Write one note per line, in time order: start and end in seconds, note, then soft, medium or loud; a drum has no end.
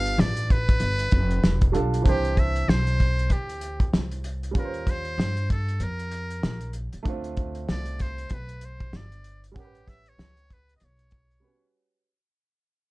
0.00 0.15 G1 medium
0.00 1.68 G3 medium
0.00 1.69 D4 medium
0.00 1.71 F4 medium
0.00 1.72 B4 medium
0.00 0.22 F5 loud
0.06 closed hi-hat soft
0.18 0.77 A1 loud
0.18 0.53 D5 loud
0.18 snare loud
0.37 closed hi-hat medium
0.50 1.75 B4 loud
0.50 kick medium
0.50 closed hi-hat medium
0.69 kick medium
0.69 closed hi-hat soft
0.80 1.10 G1 medium
0.80 closed hi-hat medium
0.99 closed hi-hat medium
1.11 1.42 F1 loud
1.11 kick medium
1.11 closed hi-hat medium
1.30 closed hi-hat soft
1.44 1.73 E1 medium
1.44 snare loud
1.61 kick loud
1.61 closed hi-hat medium
1.72 2.04 B1 medium
1.72 2.04 G3 medium
1.72 2.04 D4 medium
1.72 2.05 F4 medium
1.72 2.06 A4 medium
1.72 closed hi-hat medium
1.94 closed hi-hat medium
2.02 2.65 C2 loud
2.02 4.50 E3 medium
2.02 4.51 C4 medium
2.02 kick loud
2.06 4.52 D4 medium
2.06 2.41 G4 medium
2.06 4.53 C5 medium
2.06 closed hi-hat medium
2.25 closed hi-hat soft
2.37 2.71 E5 loud
2.37 kick medium
2.37 closed hi-hat medium
2.56 closed hi-hat soft
2.68 3.27 B1 medium
2.68 3.33 C5 loud
2.68 snare loud
2.87 closed hi-hat medium
3.00 kick medium
3.00 closed hi-hat medium
3.19 closed hi-hat soft
3.30 3.90 D2 medium
3.30 3.94 G4 medium
3.30 kick medium
3.30 closed hi-hat medium
3.49 closed hi-hat soft
3.61 closed hi-hat medium
3.80 kick medium
3.80 closed hi-hat soft
3.93 4.52 C2 medium
3.93 snare loud
4.11 closed hi-hat medium
4.24 closed hi-hat medium
4.43 closed hi-hat soft
4.51 5.15 D#2 medium
4.51 6.99 G3 medium
4.51 7.00 C#4 medium
4.51 kick loud
4.56 7.02 F4 soft
4.56 4.92 A#4 medium
4.56 4.64 B4 medium
4.56 closed hi-hat medium
4.64 7.06 C5 medium
4.74 closed hi-hat soft
4.87 5.51 C5 loud
4.87 kick medium
4.87 snare soft
4.87 closed hi-hat medium
5.05 closed hi-hat soft
5.18 5.77 G2 medium
5.18 snare loud
5.37 closed hi-hat medium
5.50 5.84 A4 medium
5.50 kick medium
5.50 closed hi-hat medium
5.68 closed hi-hat soft
5.80 6.39 F2 medium
5.80 6.75 A#4 medium
5.80 closed hi-hat medium
5.99 closed hi-hat soft
6.11 closed hi-hat medium
6.30 closed hi-hat soft
6.43 6.90 A#1 medium
6.43 snare loud
6.61 closed hi-hat medium
6.73 closed hi-hat medium
6.93 muted upright bass stroke soft
6.93 closed hi-hat medium
7.03 7.65 D2 medium
7.03 9.50 A3 medium
7.03 9.51 D4 medium
7.03 kick loud
7.03 closed hi-hat medium
7.08 9.53 C4 medium
7.08 9.52 F4 medium
7.24 closed hi-hat soft
7.37 kick medium
7.37 closed hi-hat soft
7.55 closed hi-hat soft
7.69 8.28 C2 loud
7.69 8.03 D5 medium
7.69 snare loud
7.86 closed hi-hat soft
7.99 8.35 C5 medium
7.99 kick medium
7.99 closed hi-hat medium
8.18 closed hi-hat soft
8.30 8.90 B1 medium
8.30 kick medium
8.30 closed hi-hat medium
8.34 8.67 B4 medium
8.49 closed hi-hat soft
8.61 closed hi-hat medium
8.65 8.98 C5 medium
8.80 kick medium
8.80 closed hi-hat soft
8.93 9.52 G1 medium
8.93 9.44 D5 medium
8.93 snare loud
9.12 closed hi-hat soft
9.24 closed hi-hat medium
9.44 closed hi-hat soft
9.52 11.37 G3 medium
9.52 11.38 C#4 medium
9.56 10.15 A1 medium
9.56 9.90 G4 medium
9.56 9.65 A#4 soft
9.56 11.39 F#5 medium
9.56 kick loud
9.56 closed hi-hat medium
9.64 11.42 B4 medium
9.75 closed hi-hat soft
9.88 10.10 E5 medium
9.88 kick medium
9.88 snare soft
9.88 closed hi-hat soft
10.06 10.55 C#5 medium
10.06 closed hi-hat soft
10.18 10.77 C#2 medium
10.18 snare loud
10.37 closed hi-hat soft
10.50 10.76 B4 medium
10.50 kick medium
10.50 closed hi-hat medium
10.69 closed hi-hat soft
10.76 10.86 D#5 medium
10.76 closed hi-hat medium
10.81 11.40 B1 medium
10.81 11.76 C#5 medium
10.99 closed hi-hat soft
11.11 kick medium
11.11 closed hi-hat medium
11.31 closed hi-hat soft
11.40 12.04 G3 soft
11.40 11.50 B3 soft
11.40 12.05 F#4 soft
11.40 12.06 B4 soft
11.48 12.08 C#4 soft